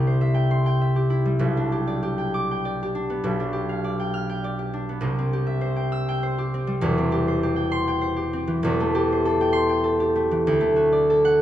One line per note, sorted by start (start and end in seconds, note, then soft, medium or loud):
0.00 1.44 C2 medium
0.00 1.44 C3 medium
0.00 1.09 E4 medium
0.00 0.95 G4 medium
0.00 0.33 G5 medium
0.07 1.44 C5 medium
0.21 0.80 E5 medium
0.34 0.65 G5 medium
0.51 1.44 C6 loud
0.66 2.17 G5 medium
0.81 1.44 E5 medium
0.96 1.71 G4 medium
1.10 1.43 E4 medium
1.25 5.15 G3 medium
1.39 3.23 B1 medium
1.39 3.23 B2 medium
1.57 2.94 D4 medium
1.72 2.01 G4 medium
1.87 2.64 D5 medium
2.03 2.81 G4 medium
2.18 2.50 G5 medium
2.34 5.07 D6 medium
2.51 3.98 G5 medium
2.65 3.83 D5 medium
2.83 3.52 G4 medium
2.95 3.39 D4 medium
3.10 4.88 B3 medium
3.24 5.06 B1 medium
3.24 5.06 B2 medium
3.40 4.72 D4 medium
3.53 4.58 G4 medium
3.69 5.06 F5 medium
3.84 4.43 D5 medium
4.00 4.28 G5 medium
4.14 5.05 F6 loud
4.29 5.75 G5 medium
4.44 5.06 D5 medium
4.59 5.32 G4 medium
4.74 5.06 D4 medium
4.89 5.06 B3 medium
5.01 6.83 C2 medium
5.01 6.84 C3 medium
5.18 6.53 C4 medium
5.33 6.37 G4 medium
5.47 9.37 E5 medium
5.61 6.22 C5 medium
5.76 6.07 G5 medium
5.92 9.82 E6 loud
6.09 7.55 G5 medium
6.23 7.27 C5 medium
6.38 7.11 G4 medium
6.54 6.97 C4 medium
6.67 10.50 G3 medium
6.81 8.62 E1 medium
6.81 8.63 E2 loud
6.98 8.32 C4 medium
7.12 7.42 G4 medium
7.28 8.00 C5 medium
7.43 8.15 G4 medium
7.56 7.86 G5 medium
7.72 9.51 C6 loud
7.88 9.40 G5 medium
8.01 9.11 C5 medium
8.16 8.93 G4 medium
8.33 10.51 C4 medium
8.47 8.66 E3 medium
8.63 10.50 E1 medium
8.63 10.51 E2 loud
8.80 10.14 A3 medium
8.95 9.99 G4 medium
9.12 10.52 C5 medium
9.25 9.83 A4 medium
9.41 9.68 G5 medium
9.53 10.49 C6 loud
9.69 10.50 G5 medium
9.84 11.09 A4 medium
10.00 10.50 G4 medium
10.16 10.59 A3 medium
10.31 10.50 E3 medium
10.47 11.42 D2 medium
10.61 11.42 A3 medium
10.76 11.42 F#4 medium
10.92 11.42 D5 medium
11.10 11.42 A4 medium
11.25 11.42 F#5 loud